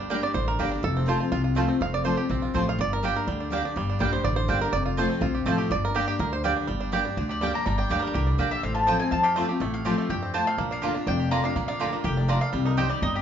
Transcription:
Already playing: G1 G2
0.00 D4
0.10 G3 A#3 D4 G4 D5 G5
0.23 D4 G4 D5
0.34 A1 D3 C5
0.48 A#4
0.58 G1 G3 A#3 D4 G4 D5 G5
0.71 D4
0.83 F1 F2 A4
0.97 C4
1.06 F3 A3 C4 F4 C5 A5
1.19 C4 F4
1.32 C2 C3 F4
1.44 F4
1.55 F3 A3 C4 F4 C5 A5
1.68 C4 F4
1.81 F1 F2 F5
1.94 D5
2.04 F3 A3 C4 F4 C5 A5
2.17 C4 F4 G4
2.29 A#1 C3 C4
2.42 F4
2.54 A1 F3 A3 C4 F4 C5 A5
2.69 F5
2.78 G1 G2 D5
2.93 A#4
3.03 G3 A#3 D4 G4 D5 G5
3.16 A#4
3.27 D2 D3 G3
3.40 D4
3.50 G3 A#3 D4 G4 D5 G5
3.62 D4 G4
3.76 G1 G2 G3
3.90 D4
3.99 A#1 G3 A#3 D4 G4 D5 G5
4.12 D4 G4 C5
4.24 A1 D3 D5
4.36 C5
4.48 G1 G3 A#3 D4 G4 D5 G5
4.61 A#4
4.73 F1 F2 D5
4.86 F4
4.97 F3 A3 C4 F4 C5 A5
5.10 C4
5.21 A#1 C3 F4
5.35 G4
5.46 A1 F3 A3 C4 F4 C5 A5
5.58 G4
5.70 G1 G2 D5
5.85 A#4
5.94 G3 A#3 D4 G4 D5 G5
6.08 G4
6.19 D2 D3 A#4
6.33 C5
6.43 G3 A#3 D4 G4 D5 G5
6.57 D4
6.67 G1 G2 G3
6.81 D4
6.92 G3 A#3 D4 G4 D5 G5
7.05 D4 G4
7.17 D2 D3 D4
7.29 G4 D5
7.41 G3 A#3 D4 G4 D5 G5
7.54 D4 A#5
7.66 G1 G2 G3 A#5
7.78 D4 G5
7.89 D2 G3 A#3 D4 G4 D5 G5
7.99 G3 A#4
8.07 A#4
8.14 C2 D3 G4
8.27 D4
8.38 A#1 G3 A#3 D4 G4 D5 G5
8.51 G3 E5
8.63 A1 A2 C4 F5
8.75 F4 A5
8.87 F3 A3 C4 F4 C5 G5 A5
8.99 C4 F4 G#5
9.11 F2 F3 F4 A5
9.23 G4 F5
9.36 F3 A3 C4 F4 C5 A5
9.48 C4 F4 G4
9.60 A1 A2 A3
9.74 F5
9.85 F3 A3 C4 F4 G4 C5 A5
9.98 A3
10.09 F2 G2 G4 G5
10.23 C4
10.34 A2 C4 F4 C5 A5
10.47 A3 F5
10.58 A#1 A#2 A#3
10.71 D4 F5
10.82 D3 A#3 D4 F4 G4 D5 A#5
10.95 D4 F4
11.07 F1 F2 D4 G5
11.19 G4
11.31 D3 A#3 D4 F4 D5 A#5
11.44 D4 F4 F5
11.56 A#1 A#2 A#3
11.68 D4 F5
11.80 D3 A#3 D4 F4 G4 D5 A#5
11.93 A#3 D4 F4
12.04 F1 A2 G4 G5
12.17 D4
12.28 A#2 A#3 D4 F4 D5 A#5
12.41 A#3 F5
12.53 C2 C3 G3
12.65 D#4 A#4
12.77 D#3 G3 C4 G4 C5 D#5 G5
12.90 G3 D5
13.02 G1 G2 D#4 D#5
13.15 G3 G4

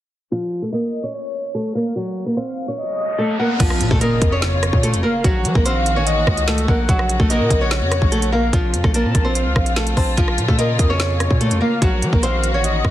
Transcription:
0.32 F3 F4
0.62 A3 A4
0.72 A#3 A#4 D#5
1.03 C#4 C#5
1.14 C#5
1.55 A3 A4
1.75 A#3 A#4 F5
1.96 F#3 F#4, riser
2.26 A#3 A#4
2.37 C4 C5 F5
2.68 C#4 C#5
2.78 D#5
3.18 A3 A4
3.39 A#3 A#4 F#5
3.60 A#1 C#3 F3 A#3 F4, kick, closed hi-hat, crash, impact
3.70 cross-stick
3.80 A#2, closed hi-hat
3.91 A#2 A3 A4, kick
4.01 A#3 A#4 D#5, closed hi-hat
4.22 F2, kick, closed hi-hat
4.32 C#4 C#5
4.42 C#5, snare
4.63 cross-stick, closed hi-hat
4.73 A#2, kick
4.83 A3 A4, closed hi-hat
4.94 F2, closed hi-hat
5.03 A#3 A#4 F5
5.24 A#1 D#3 F#3 A#3 F#4, kick, closed hi-hat
5.45 F3, closed hi-hat
5.55 A#1 A#3 A#4, kick
5.65 C4 C5 F5, closed hi-hat
5.86 closed hi-hat
5.96 A1 C#4 C#5
6.06 D#5, closed hi-hat
6.27 C#2, kick, cross-stick
6.37 closed hi-hat
6.47 A3 A4, snare
6.58 closed hi-hat
6.68 A#1 A#3 A#4 F#5, kick
6.89 A#1 C#3 F#3 A#3 F#4, kick, closed hi-hat
6.99 cross-stick
7.09 closed hi-hat
7.19 A#1 A3 A4, kick
7.30 A#3 A#4 D#5, closed hi-hat
7.40 A#2
7.50 A#1, kick, closed hi-hat
7.61 C#4 C#5
7.71 C#5, snare
7.81 F2
7.92 cross-stick, closed hi-hat
8.02 A#1, kick
8.12 A3 A4, closed hi-hat
8.22 closed hi-hat
8.32 A#3 A#4 F5
8.53 A#1 C3 F3 C4 F4, kick, closed hi-hat
8.74 F2, closed hi-hat
8.84 A#1 A3 A4, kick, cross-stick
8.94 A#3 A#4 A5, closed hi-hat
9.05 A#2
9.15 A#1, kick, closed hi-hat
9.25 C4 C5
9.35 F5, closed hi-hat
9.46 C#2
9.56 A#1, kick, cross-stick
9.66 closed hi-hat
9.76 A3 A4, snare
9.87 closed hi-hat
9.97 A#1 C4 C5 A5, kick, open hi-hat
10.17 A#1 C#3 F3 A#3 F4, kick, closed hi-hat
10.28 cross-stick
10.38 A#2, closed hi-hat
10.48 A#2 A3 A4, kick
10.58 A#3 A#4 D#5, closed hi-hat
10.79 F2, kick, closed hi-hat
10.90 C#4 C#5
11.00 C#5, snare
11.20 cross-stick, closed hi-hat
11.31 A#2, kick
11.41 A3 A4, closed hi-hat
11.51 F2, closed hi-hat
11.61 A#3 A#4 F5
11.82 A#1 D#3 F#3 F#4, kick, closed hi-hat
12.02 F3, closed hi-hat
12.13 A#1 A#3 A#4, kick
12.23 C4 C5 F5, closed hi-hat
12.44 closed hi-hat
12.54 A1 C#4 C#5
12.64 D#5, closed hi-hat
12.85 C#2, kick, cross-stick

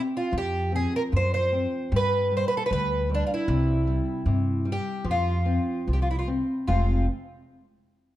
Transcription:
Already playing: C4
0.17 F4
0.32 F2 F3
0.38 G4
0.72 C4 G#4
0.96 A#4
1.12 F#2 F4
1.16 C5
1.34 C5
1.52 C4
1.92 G2 G3
1.96 B4
2.32 G3
2.37 C5
2.48 B4
2.57 A4
2.66 B4
2.70 D2 G3 B4
3.10 G3
3.14 D4
3.27 F4
3.34 E4
3.48 C2 C3
3.87 G3
4.26 G2 C3
4.65 G3
4.72 G4
5.04 F2 F3
5.11 F4
5.46 C4
5.88 C2 F3
5.93 G4
6.02 F4
6.11 E4
6.19 F4
6.28 C4
6.67 F1 F2 C3 F3 G#3 C4 F4

